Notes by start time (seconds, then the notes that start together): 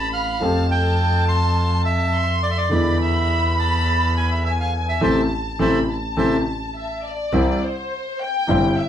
Already playing: A1 A2 E3 A3 C4 A4 B5
0.13 F5
0.40 F2 F3 A3 C4 A5
0.44 G4
0.71 G5
1.28 C6
1.85 E5
2.14 C6
2.43 D5
2.51 E5
2.57 D5
2.69 E2 D3 E3 G#3 B3 B5
2.73 E2 E4
3.02 E5
3.59 A5
4.17 G#5
4.31 E5
4.45 E5 G#5
4.60 F5
4.89 E5
5.01 A1 C3 E3 A3 C5 E5 A5
5.59 A1 C3 E3 A3 C5 E5 A5 B5
5.89 A5
6.17 A1 C3 E3 A3 C5 E5 A5
6.76 E5
7.05 D5
7.33 C2 C3 E3 G3 C4 E4 G4
7.62 C5
8.21 G5
8.47 G1 G2 C3 E3 G3 C4 E4 G4
8.78 E5